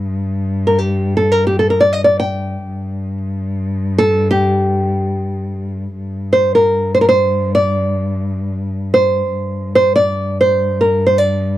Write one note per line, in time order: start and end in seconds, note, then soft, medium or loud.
0.00 2.64 G2 medium
0.00 0.19 D5 medium
0.67 0.79 A#4 medium
0.79 1.16 G4 medium
1.17 1.32 A4 medium
1.32 1.46 A#4 medium
1.47 1.59 G4 medium
1.59 1.70 A4 medium
1.70 1.82 A#4 medium
1.81 1.93 D5 medium
1.93 2.04 D#5 medium
2.04 2.19 D5 medium
2.20 3.18 G5 medium
2.64 5.96 G2 medium
3.98 4.27 A4 medium
4.31 5.68 G4 medium
5.96 9.29 G2 medium
6.33 6.55 C5 medium
6.55 6.94 A#4 medium
6.95 7.01 C5 medium
7.01 7.08 A#4 medium
7.09 7.54 C5 medium
7.55 8.53 D5 medium
8.94 9.74 C5 medium
9.30 11.58 G2 medium
9.75 9.95 C5 medium
9.96 10.40 D5 medium
10.41 10.81 C5 medium
10.81 11.06 A#4 medium
11.06 11.18 C5 medium
11.18 11.58 D5 medium